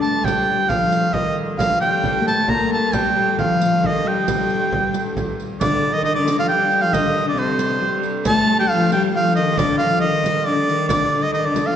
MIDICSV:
0, 0, Header, 1, 6, 480
1, 0, Start_track
1, 0, Tempo, 445434
1, 275, Time_signature, 3, 2, 24, 8
1, 6514, Tempo, 440852
1, 12736, End_track
2, 0, Start_track
2, 0, Title_t, "Shawm"
2, 0, Program_c, 0, 111
2, 17, Note_on_c, 0, 81, 92
2, 267, Note_on_c, 0, 79, 96
2, 283, Note_off_c, 0, 81, 0
2, 747, Note_on_c, 0, 77, 87
2, 763, Note_off_c, 0, 79, 0
2, 1226, Note_on_c, 0, 75, 77
2, 1242, Note_off_c, 0, 77, 0
2, 1473, Note_off_c, 0, 75, 0
2, 1707, Note_on_c, 0, 77, 97
2, 1937, Note_off_c, 0, 77, 0
2, 1951, Note_on_c, 0, 79, 95
2, 2403, Note_off_c, 0, 79, 0
2, 2449, Note_on_c, 0, 81, 99
2, 2690, Note_on_c, 0, 82, 100
2, 2706, Note_off_c, 0, 81, 0
2, 2926, Note_off_c, 0, 82, 0
2, 2942, Note_on_c, 0, 81, 95
2, 3171, Note_on_c, 0, 79, 102
2, 3187, Note_off_c, 0, 81, 0
2, 3646, Note_off_c, 0, 79, 0
2, 3657, Note_on_c, 0, 77, 85
2, 4163, Note_on_c, 0, 75, 89
2, 4179, Note_off_c, 0, 77, 0
2, 4396, Note_on_c, 0, 79, 90
2, 4412, Note_off_c, 0, 75, 0
2, 5576, Note_off_c, 0, 79, 0
2, 6043, Note_on_c, 0, 74, 99
2, 6394, Note_on_c, 0, 75, 98
2, 6411, Note_off_c, 0, 74, 0
2, 6511, Note_off_c, 0, 75, 0
2, 6517, Note_on_c, 0, 75, 100
2, 6624, Note_off_c, 0, 75, 0
2, 6630, Note_on_c, 0, 74, 88
2, 6857, Note_off_c, 0, 74, 0
2, 6896, Note_on_c, 0, 77, 95
2, 6945, Note_off_c, 0, 77, 0
2, 6994, Note_on_c, 0, 79, 111
2, 7356, Note_on_c, 0, 77, 97
2, 7372, Note_off_c, 0, 79, 0
2, 7487, Note_on_c, 0, 75, 105
2, 7503, Note_off_c, 0, 77, 0
2, 7844, Note_off_c, 0, 75, 0
2, 7870, Note_on_c, 0, 74, 87
2, 7976, Note_on_c, 0, 72, 76
2, 7993, Note_off_c, 0, 74, 0
2, 8689, Note_off_c, 0, 72, 0
2, 8941, Note_on_c, 0, 81, 118
2, 9267, Note_off_c, 0, 81, 0
2, 9290, Note_on_c, 0, 79, 112
2, 9404, Note_on_c, 0, 77, 103
2, 9420, Note_off_c, 0, 79, 0
2, 9643, Note_off_c, 0, 77, 0
2, 9653, Note_on_c, 0, 79, 111
2, 9759, Note_off_c, 0, 79, 0
2, 9903, Note_on_c, 0, 77, 106
2, 10114, Note_off_c, 0, 77, 0
2, 10120, Note_on_c, 0, 75, 100
2, 10367, Note_on_c, 0, 74, 107
2, 10383, Note_off_c, 0, 75, 0
2, 10577, Note_off_c, 0, 74, 0
2, 10583, Note_on_c, 0, 77, 100
2, 10814, Note_off_c, 0, 77, 0
2, 10825, Note_on_c, 0, 75, 101
2, 11317, Note_on_c, 0, 74, 96
2, 11333, Note_off_c, 0, 75, 0
2, 11780, Note_off_c, 0, 74, 0
2, 11786, Note_on_c, 0, 74, 100
2, 12157, Note_on_c, 0, 75, 94
2, 12174, Note_off_c, 0, 74, 0
2, 12268, Note_off_c, 0, 75, 0
2, 12275, Note_on_c, 0, 75, 89
2, 12403, Note_on_c, 0, 74, 82
2, 12420, Note_off_c, 0, 75, 0
2, 12636, Note_on_c, 0, 77, 88
2, 12653, Note_off_c, 0, 74, 0
2, 12736, Note_off_c, 0, 77, 0
2, 12736, End_track
3, 0, Start_track
3, 0, Title_t, "Viola da gamba"
3, 0, Program_c, 1, 42
3, 31, Note_on_c, 1, 57, 77
3, 264, Note_on_c, 1, 55, 74
3, 280, Note_off_c, 1, 57, 0
3, 670, Note_off_c, 1, 55, 0
3, 670, Note_on_c, 1, 55, 57
3, 724, Note_on_c, 1, 53, 67
3, 741, Note_off_c, 1, 55, 0
3, 1212, Note_off_c, 1, 53, 0
3, 1219, Note_on_c, 1, 51, 63
3, 1452, Note_off_c, 1, 51, 0
3, 1694, Note_on_c, 1, 53, 73
3, 1743, Note_on_c, 1, 51, 64
3, 1760, Note_off_c, 1, 53, 0
3, 1826, Note_on_c, 1, 53, 78
3, 1842, Note_off_c, 1, 51, 0
3, 1938, Note_off_c, 1, 53, 0
3, 1945, Note_on_c, 1, 55, 91
3, 2373, Note_on_c, 1, 58, 64
3, 2389, Note_off_c, 1, 55, 0
3, 2452, Note_on_c, 1, 57, 88
3, 2468, Note_off_c, 1, 58, 0
3, 2673, Note_on_c, 1, 58, 88
3, 2690, Note_off_c, 1, 57, 0
3, 3160, Note_on_c, 1, 55, 85
3, 3176, Note_off_c, 1, 58, 0
3, 3372, Note_off_c, 1, 55, 0
3, 3378, Note_on_c, 1, 55, 81
3, 3612, Note_off_c, 1, 55, 0
3, 3624, Note_on_c, 1, 53, 77
3, 4139, Note_on_c, 1, 51, 69
3, 4155, Note_off_c, 1, 53, 0
3, 4353, Note_off_c, 1, 51, 0
3, 4360, Note_on_c, 1, 55, 81
3, 5514, Note_off_c, 1, 55, 0
3, 6044, Note_on_c, 1, 50, 80
3, 6373, Note_off_c, 1, 50, 0
3, 6404, Note_on_c, 1, 51, 86
3, 6510, Note_off_c, 1, 51, 0
3, 6519, Note_on_c, 1, 51, 86
3, 6629, Note_off_c, 1, 51, 0
3, 6644, Note_on_c, 1, 50, 86
3, 6714, Note_on_c, 1, 51, 73
3, 6730, Note_off_c, 1, 50, 0
3, 6776, Note_on_c, 1, 50, 88
3, 6793, Note_off_c, 1, 51, 0
3, 6886, Note_off_c, 1, 50, 0
3, 6909, Note_on_c, 1, 53, 79
3, 6956, Note_off_c, 1, 53, 0
3, 7010, Note_on_c, 1, 55, 88
3, 7354, Note_on_c, 1, 53, 95
3, 7370, Note_off_c, 1, 55, 0
3, 7465, Note_off_c, 1, 53, 0
3, 7472, Note_on_c, 1, 51, 83
3, 7534, Note_on_c, 1, 50, 75
3, 7550, Note_off_c, 1, 51, 0
3, 7623, Note_on_c, 1, 51, 92
3, 7639, Note_off_c, 1, 50, 0
3, 7815, Note_off_c, 1, 51, 0
3, 7822, Note_on_c, 1, 50, 86
3, 7934, Note_off_c, 1, 50, 0
3, 7941, Note_on_c, 1, 48, 82
3, 8432, Note_on_c, 1, 55, 84
3, 8448, Note_off_c, 1, 48, 0
3, 8677, Note_off_c, 1, 55, 0
3, 8915, Note_on_c, 1, 57, 108
3, 9293, Note_on_c, 1, 55, 96
3, 9309, Note_off_c, 1, 57, 0
3, 9407, Note_off_c, 1, 55, 0
3, 9430, Note_on_c, 1, 53, 96
3, 9640, Note_off_c, 1, 53, 0
3, 9660, Note_on_c, 1, 55, 90
3, 9875, Note_off_c, 1, 55, 0
3, 9920, Note_on_c, 1, 53, 92
3, 10145, Note_on_c, 1, 51, 94
3, 10162, Note_off_c, 1, 53, 0
3, 10381, Note_on_c, 1, 50, 90
3, 10397, Note_off_c, 1, 51, 0
3, 10627, Note_on_c, 1, 53, 82
3, 10643, Note_off_c, 1, 50, 0
3, 10854, Note_on_c, 1, 51, 84
3, 10870, Note_off_c, 1, 53, 0
3, 11314, Note_off_c, 1, 51, 0
3, 11321, Note_on_c, 1, 50, 84
3, 11428, Note_off_c, 1, 50, 0
3, 11567, Note_on_c, 1, 51, 79
3, 11815, Note_on_c, 1, 50, 81
3, 11831, Note_off_c, 1, 51, 0
3, 12277, Note_off_c, 1, 50, 0
3, 12284, Note_on_c, 1, 51, 75
3, 12416, Note_on_c, 1, 50, 82
3, 12432, Note_off_c, 1, 51, 0
3, 12645, Note_off_c, 1, 50, 0
3, 12650, Note_on_c, 1, 53, 77
3, 12736, Note_off_c, 1, 53, 0
3, 12736, End_track
4, 0, Start_track
4, 0, Title_t, "Hurdy-gurdy"
4, 0, Program_c, 2, 110
4, 0, Note_on_c, 2, 43, 74
4, 0, Note_on_c, 2, 50, 74
4, 244, Note_off_c, 2, 50, 0
4, 244, Note_on_c, 2, 50, 74
4, 249, Note_off_c, 2, 43, 0
4, 249, Note_on_c, 2, 43, 72
4, 6045, Note_off_c, 2, 43, 0
4, 6045, Note_on_c, 2, 43, 89
4, 6049, Note_off_c, 2, 50, 0
4, 6049, Note_on_c, 2, 50, 81
4, 11799, Note_off_c, 2, 50, 0
4, 11799, Note_on_c, 2, 50, 85
4, 11800, Note_off_c, 2, 43, 0
4, 11800, Note_on_c, 2, 43, 82
4, 12736, Note_off_c, 2, 43, 0
4, 12736, Note_off_c, 2, 50, 0
4, 12736, End_track
5, 0, Start_track
5, 0, Title_t, "Frame drum"
5, 29, Note_on_c, 9, 64, 25
5, 137, Note_off_c, 9, 64, 0
5, 263, Note_on_c, 9, 64, 90
5, 371, Note_off_c, 9, 64, 0
5, 752, Note_on_c, 9, 64, 94
5, 860, Note_off_c, 9, 64, 0
5, 990, Note_on_c, 9, 64, 26
5, 1098, Note_off_c, 9, 64, 0
5, 1225, Note_on_c, 9, 64, 87
5, 1333, Note_off_c, 9, 64, 0
5, 1480, Note_on_c, 9, 64, 27
5, 1588, Note_off_c, 9, 64, 0
5, 1713, Note_on_c, 9, 64, 88
5, 1820, Note_off_c, 9, 64, 0
5, 2195, Note_on_c, 9, 64, 89
5, 2303, Note_off_c, 9, 64, 0
5, 2435, Note_on_c, 9, 64, 29
5, 2542, Note_off_c, 9, 64, 0
5, 2674, Note_on_c, 9, 64, 84
5, 2782, Note_off_c, 9, 64, 0
5, 2920, Note_on_c, 9, 64, 25
5, 3027, Note_off_c, 9, 64, 0
5, 3164, Note_on_c, 9, 64, 85
5, 3272, Note_off_c, 9, 64, 0
5, 3650, Note_on_c, 9, 64, 85
5, 3758, Note_off_c, 9, 64, 0
5, 3896, Note_on_c, 9, 64, 24
5, 4004, Note_off_c, 9, 64, 0
5, 4136, Note_on_c, 9, 64, 78
5, 4244, Note_off_c, 9, 64, 0
5, 4372, Note_on_c, 9, 64, 23
5, 4480, Note_off_c, 9, 64, 0
5, 4615, Note_on_c, 9, 64, 80
5, 4723, Note_off_c, 9, 64, 0
5, 5092, Note_on_c, 9, 64, 81
5, 5199, Note_off_c, 9, 64, 0
5, 5567, Note_on_c, 9, 64, 84
5, 5675, Note_off_c, 9, 64, 0
5, 5813, Note_on_c, 9, 64, 28
5, 5920, Note_off_c, 9, 64, 0
5, 6050, Note_on_c, 9, 64, 94
5, 6158, Note_off_c, 9, 64, 0
5, 6770, Note_on_c, 9, 64, 62
5, 6879, Note_off_c, 9, 64, 0
5, 7003, Note_on_c, 9, 64, 26
5, 7112, Note_off_c, 9, 64, 0
5, 7248, Note_on_c, 9, 64, 27
5, 7357, Note_off_c, 9, 64, 0
5, 7479, Note_on_c, 9, 64, 79
5, 7588, Note_off_c, 9, 64, 0
5, 8445, Note_on_c, 9, 64, 28
5, 8553, Note_off_c, 9, 64, 0
5, 8687, Note_on_c, 9, 64, 29
5, 8795, Note_off_c, 9, 64, 0
5, 8918, Note_on_c, 9, 64, 100
5, 9027, Note_off_c, 9, 64, 0
5, 9645, Note_on_c, 9, 64, 72
5, 9754, Note_off_c, 9, 64, 0
5, 9887, Note_on_c, 9, 64, 29
5, 9996, Note_off_c, 9, 64, 0
5, 10120, Note_on_c, 9, 64, 27
5, 10229, Note_off_c, 9, 64, 0
5, 10359, Note_on_c, 9, 64, 98
5, 10467, Note_off_c, 9, 64, 0
5, 10605, Note_on_c, 9, 64, 28
5, 10714, Note_off_c, 9, 64, 0
5, 11080, Note_on_c, 9, 64, 72
5, 11188, Note_off_c, 9, 64, 0
5, 11790, Note_on_c, 9, 64, 87
5, 11899, Note_off_c, 9, 64, 0
5, 12509, Note_on_c, 9, 64, 71
5, 12618, Note_off_c, 9, 64, 0
5, 12736, End_track
6, 0, Start_track
6, 0, Title_t, "Riq"
6, 46, Note_on_c, 9, 54, 20
6, 154, Note_off_c, 9, 54, 0
6, 298, Note_on_c, 9, 54, 64
6, 406, Note_off_c, 9, 54, 0
6, 754, Note_on_c, 9, 54, 20
6, 862, Note_off_c, 9, 54, 0
6, 995, Note_on_c, 9, 54, 51
6, 1102, Note_off_c, 9, 54, 0
6, 1727, Note_on_c, 9, 54, 55
6, 1835, Note_off_c, 9, 54, 0
6, 2214, Note_on_c, 9, 54, 20
6, 2322, Note_off_c, 9, 54, 0
6, 2454, Note_on_c, 9, 54, 51
6, 2561, Note_off_c, 9, 54, 0
6, 3160, Note_on_c, 9, 54, 65
6, 3268, Note_off_c, 9, 54, 0
6, 3653, Note_on_c, 9, 54, 21
6, 3760, Note_off_c, 9, 54, 0
6, 3895, Note_on_c, 9, 54, 53
6, 4003, Note_off_c, 9, 54, 0
6, 4612, Note_on_c, 9, 54, 62
6, 4719, Note_off_c, 9, 54, 0
6, 4847, Note_on_c, 9, 54, 20
6, 4954, Note_off_c, 9, 54, 0
6, 5327, Note_on_c, 9, 54, 49
6, 5434, Note_off_c, 9, 54, 0
6, 5576, Note_on_c, 9, 54, 20
6, 5684, Note_off_c, 9, 54, 0
6, 5816, Note_on_c, 9, 54, 20
6, 5924, Note_off_c, 9, 54, 0
6, 6045, Note_on_c, 9, 54, 65
6, 6153, Note_off_c, 9, 54, 0
6, 6524, Note_on_c, 9, 54, 21
6, 6633, Note_off_c, 9, 54, 0
6, 6765, Note_on_c, 9, 54, 56
6, 6873, Note_off_c, 9, 54, 0
6, 7246, Note_on_c, 9, 54, 20
6, 7355, Note_off_c, 9, 54, 0
6, 7492, Note_on_c, 9, 54, 58
6, 7601, Note_off_c, 9, 54, 0
6, 7960, Note_on_c, 9, 54, 18
6, 8069, Note_off_c, 9, 54, 0
6, 8197, Note_on_c, 9, 54, 53
6, 8306, Note_off_c, 9, 54, 0
6, 8679, Note_on_c, 9, 54, 21
6, 8787, Note_off_c, 9, 54, 0
6, 8917, Note_on_c, 9, 54, 65
6, 9025, Note_off_c, 9, 54, 0
6, 9410, Note_on_c, 9, 54, 20
6, 9519, Note_off_c, 9, 54, 0
6, 9644, Note_on_c, 9, 54, 54
6, 9752, Note_off_c, 9, 54, 0
6, 10131, Note_on_c, 9, 54, 23
6, 10239, Note_off_c, 9, 54, 0
6, 10372, Note_on_c, 9, 54, 63
6, 10481, Note_off_c, 9, 54, 0
6, 10607, Note_on_c, 9, 54, 21
6, 10716, Note_off_c, 9, 54, 0
6, 11100, Note_on_c, 9, 54, 56
6, 11209, Note_off_c, 9, 54, 0
6, 11575, Note_on_c, 9, 54, 21
6, 11684, Note_off_c, 9, 54, 0
6, 11801, Note_on_c, 9, 54, 69
6, 11910, Note_off_c, 9, 54, 0
6, 12290, Note_on_c, 9, 54, 21
6, 12398, Note_off_c, 9, 54, 0
6, 12518, Note_on_c, 9, 54, 55
6, 12627, Note_off_c, 9, 54, 0
6, 12736, End_track
0, 0, End_of_file